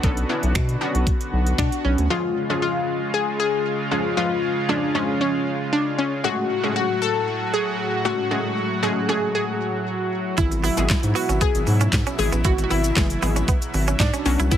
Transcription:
Already playing: analog synth pad D3 B3 F#4, synth pluck F#5
0.03 analog synth bass B1, synth pluck B3 C#4 D4 A4, kick, closed hi-hat, swell
0.17 closed hi-hat
0.29 synth pluck B3 C#4 D4 E4
0.43 analog synth bass B1, closed hi-hat
0.55 analog synth bass B2, finger snap, kick, closed hi-hat
0.69 closed hi-hat
0.81 synth pluck B3 C#4 D4 F#4
0.95 analog synth bass B1, closed hi-hat
1.07 kick, closed hi-hat
1.21 closed hi-hat
1.33 analog synth bass B1
1.47 closed hi-hat
1.58 analog synth bass B2, synth pluck D4, finger snap, kick, closed hi-hat
1.72 closed hi-hat
1.84 analog synth bass B1, synth pluck C#4
1.98 analog synth bass D2, closed hi-hat
2.10 analog synth pad C#3 G#3 F4, synth pluck F3 G#3 C#4 F4 G#4
2.50 synth pluck F3 G#3 C#4 F4 G#4
2.62 synth pluck F4
3.14 synth pluck G#4
3.40 synth pluck G#4
3.91 synth pluck F3 G#3 C#4 F4 G#4
4.17 synth pluck F3 G#3 C#4 F4 B4
4.69 synth pluck F3 G#3 C#4 D4 F4 G#4
4.95 synth pluck F3 G#3 C#4 F4 G#4
5.21 synth pluck C#4
5.73 synth pluck D4
5.99 synth pluck C#4
6.24 analog synth pad A2 F#3 F#4, synth pluck G#3 A3 C#4 F#4 G#4
6.63 synth pluck G#3 A3 C#4 F#4 G#4
6.76 synth pluck F#4
7.02 synth pluck A4
7.54 synth pluck G#4
8.05 synth pluck G#3 A3 C#4 F#4 A4
8.31 synth pluck G#3 A3 C#4 F#4 G#4
8.83 synth pluck G#3 A3 C#4 F#4 G#4
9.09 synth pluck G#3 A3 C#4 F#4 G#4
9.35 synth pluck G#4
10.38 analog synth bass G#1, analog synth pad B2 E4, synth pluck E3 G#3 B3 E4 G#4, clean electric guitar E4, kick, closed hi-hat, shaker
10.51 muted clean electric guitar stroke, closed hi-hat, shaker
10.64 clean electric guitar B3, synth pluck E4, open hi-hat, shaker
10.77 analog synth bass G#1, synth pluck E3 G#3 B3 E4 G#4, closed hi-hat, shaker
10.89 analog synth bass G#2, muted clean electric guitar stroke, kick, snare, clap, closed hi-hat, shaker
11.03 analog synth bass G#2, closed hi-hat, shaker
11.15 clean electric guitar B3, synth pluck F#4, open hi-hat, shaker
11.29 analog synth bass G#1, clean electric guitar C#4, closed hi-hat, shaker
11.41 clean electric guitar B3, synth pluck G#4, kick, closed hi-hat, shaker
11.55 analog synth bass G#1, closed hi-hat, shaker
11.67 analog synth bass G#2, muted clean electric guitar stroke, open hi-hat, shaker
11.81 clean electric guitar C#4, closed hi-hat, shaker
11.93 analog synth bass G#2, kick, snare, clap, closed hi-hat, shaker
12.07 clean electric guitar C#4, closed hi-hat, shaker
12.19 analog synth bass G#1, synth pluck E3 G#3 B3 E4 G#4, muted clean electric guitar stroke, open hi-hat, shaker
12.32 analog synth bass A1, clean electric guitar B3, closed hi-hat, shaker
12.44 analog synth bass G#1, synth pluck E3 G#3 B3 E4 F#4, clean electric guitar E4, kick, closed hi-hat, shaker
12.58 muted clean electric guitar stroke, closed hi-hat, shaker
12.64 synth pluck F#4
12.70 analog synth bass G#1, clean electric guitar B3, synth pluck E4, open hi-hat, shaker
12.84 closed hi-hat, shaker
12.96 analog synth bass F#1, synth pluck E3 G#3 B3 E4 G#4, muted clean electric guitar stroke, kick, snare, clap, closed hi-hat, shaker
13.10 closed hi-hat, shaker
13.22 analog synth bass G#1, synth pluck E3 G#3 B3 E4 G#4, clean electric guitar B3, open hi-hat, shaker
13.36 clean electric guitar C#4, closed hi-hat, shaker
13.48 clean electric guitar B3, kick, closed hi-hat, shaker
13.62 closed hi-hat, shaker
13.74 analog synth bass G#1, muted clean electric guitar stroke, open hi-hat, shaker
13.88 clean electric guitar C#4, closed hi-hat, shaker
14.00 analog synth bass G#2, synth pluck D4, kick, snare, clap, closed hi-hat, shaker
14.14 clean electric guitar C#4, closed hi-hat, shaker
14.25 analog synth bass B1, analog synth pad D3 B3 F#4, synth pluck F#3 B3 C#4 D4 F#4, muted clean electric guitar stroke, open hi-hat, shaker
14.39 analog synth bass C2, clean electric guitar E4, closed hi-hat, shaker
14.51 analog synth bass B1, clean electric guitar B3, synth pluck E4, kick, closed hi-hat, shaker

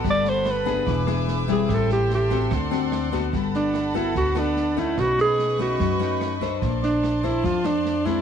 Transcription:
Already playing: nylon-string guitar B3 F#4 A4, string section A4 F#5
0.04 upright bass G1, nylon-string guitar G3, string section A5 B5, kick, snare
0.10 alto saxophone D5
0.25 snare
0.29 alto saxophone C5
0.45 cross-stick, snare
0.51 alto saxophone B4
0.65 nylon-string guitar B3 D4 G#4, kick, snare
0.86 upright bass E1, nylon-string guitar E3, string section B4 E5 G#5 D6, kick, snare
1.07 nylon-string guitar B3 D4 G#4, cross-stick, snare
1.28 snare
1.48 nylon-string guitar G3 C4 E4, alto saxophone G#4, kick, snare
1.68 upright bass A1, nylon-string guitar A2, string section A4 G5 C6, kick, cross-stick, snare
1.74 alto saxophone A4
1.90 alto saxophone G4, snare
2.10 snare
2.15 alto saxophone G4
2.30 nylon-string guitar C4 F#4 A4, kick, snare
2.51 upright bass D2, nylon-string guitar D3, string section D5 F#5, kick, cross-stick, snare
2.71 nylon-string guitar C4 F#4 A4, snare
2.92 cross-stick, snare
3.12 nylon-string guitar B3 F#4 A4, kick, snare
3.33 upright bass G1, nylon-string guitar G3, string section A4 F#5 A5 B5, kick, snare
3.54 alto saxophone D4, snare
3.74 cross-stick, snare
3.94 nylon-string guitar B3 F#4 A4, alto saxophone E4, kick, snare
4.15 upright bass D2, nylon-string guitar D3, alto saxophone F#4, kick, snare
4.35 nylon-string guitar B3 F#4 A4, alto saxophone D4, cross-stick, snare
4.57 snare
4.77 nylon-string guitar A3 C#4 D#4, alto saxophone E4, kick, snare
4.97 upright bass B1, nylon-string guitar B2, alto saxophone F#4, string section B4 D#5 B5 C#6, kick, cross-stick, snare
5.18 alto saxophone G#4, snare
5.39 snare
5.59 nylon-string guitar A3 C#4 D#4, alto saxophone F#4, kick, snare
5.79 upright bass F#2, nylon-string guitar F#3, kick, cross-stick, snare
5.99 nylon-string guitar A3 C#4 D#4, snare
6.21 cross-stick, snare
6.41 nylon-string guitar D4 A4 C5, kick, snare
6.62 upright bass A#1, nylon-string guitar A#3, string section D5 A5 C6, kick, snare
6.83 alto saxophone D4, snare
7.03 cross-stick, snare
7.23 nylon-string guitar D4 A4 C5, alto saxophone E4, kick, snare
7.43 upright bass F2, nylon-string guitar F3, alto saxophone F4, kick, snare
7.64 nylon-string guitar D4 A4 C5, alto saxophone D4, cross-stick, snare
7.85 snare
8.05 nylon-string guitar G#3 C4 D4, alto saxophone E4, kick, snare

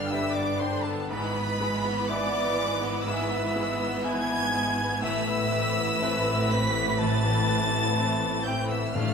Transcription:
Already playing: double bass section G1, harp G2 D3 D4 B4 D5 G5 D6, grand piano G2 D3 D4 G4 B4, cello section G2, viola section D3 D4, french horn section G3 D4, violin section B3 G4 F6, flute F5
0.10 violin section G3 E6, grand piano D4 G4 B4, flute E5, harp G5
0.34 violin section B3 D6, flute D5, harp B5
0.60 grand piano D4, violin section D4 C6, flute C5, harp G5
0.83 flute A4, harp B4, violin section A5
0.88 violin section B3
1.09 double bass section G#1, grand piano G#2, harp G#2, cello section G#2, viola section E3 B3, french horn section B3 E4, flute B4, violin section B4 B5
1.13 violin section G#3
1.36 harp G#3, violin section B3
1.60 grand piano G#3, violin section G#3, harp B4
1.85 violin section B3, harp E4
2.07 violin section G#3 D6, grand piano B3 E4 B4, flute D5, harp E5
2.33 violin section B3, harp B5
2.58 violin section G#3, grand piano B3, harp E5
2.81 violin section B3, harp B4
3.04 harp G#2, grand piano G#2, violin section G#3 E6, flute E5
3.30 violin section B3
3.55 violin section G#3, grand piano G#3, harp B4
3.79 violin section B3, harp E4
4.04 violin section G#3 G#6, grand piano B3 E4 B4, harp E5, flute G#5
4.29 violin section B3, harp B5
4.53 violin section G#3, grand piano B3, harp E5
4.78 violin section B3, harp B4
5.02 double bass section A1, grand piano A2, cello section A2, harp A2, viola section E3 A3, violin section A3 B4 E6, french horn section E4 B4, flute E5
5.27 violin section B3, harp C4
5.51 grand piano E3, violin section C4, harp B4
5.76 violin section B3
6.01 violin section A3, grand piano C4 E4 B4, harp E5
6.27 violin section B3, harp B5
6.50 violin section C4 B6, grand piano C4, harp E5, flute B5
6.74 violin section B3, harp B4
6.99 grand piano A2, harp E3, violin section A3 A6, flute A5
7.24 violin section B3, harp C4
7.47 grand piano E3, violin section C4, harp B4
7.71 violin section B3
7.96 violin section A3, grand piano C4 E4 B4, harp E5
8.20 violin section B3, harp B5
8.45 violin section C4 G6, grand piano C4, harp E5, flute G5
8.69 violin section B3 E6, harp B4, flute E5
8.94 double bass section A1, grand piano A2, cello section A2, harp A2, timpani A2, viola section D3 A3, violin section A3 D5 F6, french horn section A3 D4, flute F5

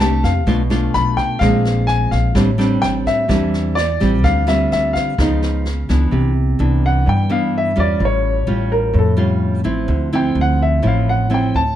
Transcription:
Already playing: upright bass C2, nylon-string guitar C3
0.00 nylon-string guitar A3 D4 G4, grand piano A5, cross-stick
0.23 upright bass F2, grand piano F5, kick, snare
0.47 upright bass B1, nylon-string guitar B2 A3 D4 F4, kick, snare
0.70 nylon-string guitar A3 D4 F4, cross-stick, snare
0.94 upright bass B1, grand piano B5, snare
1.17 grand piano G5, kick, snare
1.39 upright bass A#1, nylon-string guitar A#2 G#3 C4 D4, grand piano F5, kick, cross-stick, snare
1.65 snare
1.87 grand piano G#5, snare
2.11 upright bass A#1, grand piano F5, kick, snare
2.35 upright bass A1, nylon-string guitar A2 G3 C4 D4, kick, cross-stick, snare
2.58 nylon-string guitar G3 C4 D4, snare
2.82 upright bass A1, grand piano G5, snare
3.06 grand piano E5, kick, snare
3.28 upright bass E2, nylon-string guitar E3 G3 C4 D4, kick, cross-stick, snare
3.54 snare
3.75 grand piano D5, cross-stick, snare
4.00 upright bass A1, nylon-string guitar G3 C4 F4, kick, snare
4.24 upright bass D2, nylon-string guitar D3, grand piano F5, kick, snare
4.47 nylon-string guitar G3 C4 F4, grand piano E5, cross-stick, snare
4.72 upright bass D2, grand piano E5, snare
4.93 grand piano F5, kick, snare
5.18 upright bass C#2, nylon-string guitar C#3 F3 B3 D#4, kick, cross-stick, snare
5.42 snare
5.65 snare
5.89 upright bass C#2, nylon-string guitar E3 B3 D4, kick, snare
6.11 upright bass C2, nylon-string guitar C3
6.59 upright bass C2, nylon-string guitar E3 B3 D4
6.86 grand piano F#5
7.06 nylon-string guitar G2, upright bass G2, grand piano G5
7.29 nylon-string guitar E3 B3 D4, grand piano F5
7.58 grand piano E5
7.76 upright bass E2, nylon-string guitar G3 C#4 F4
7.80 grand piano D5
7.99 upright bass A1, nylon-string guitar A2
8.05 grand piano C#5
8.47 upright bass A1, nylon-string guitar G3 C#4 F4
8.72 grand piano A#4
8.94 upright bass F2, nylon-string guitar A2
8.99 grand piano A4
9.17 nylon-string guitar G3 C#4 F4
9.64 upright bass A1, nylon-string guitar F3 C4 E4
9.88 upright bass D2, nylon-string guitar D3
10.13 nylon-string guitar F3 C4 E4, grand piano G5
10.35 upright bass D2
10.41 grand piano F#5
10.62 grand piano E5
10.82 upright bass A1, nylon-string guitar A2 F3 C4 E4
10.87 grand piano F5
11.09 grand piano F#5
11.30 nylon-string guitar F3 C4 E4
11.34 grand piano G5
11.54 upright bass D2, grand piano A5

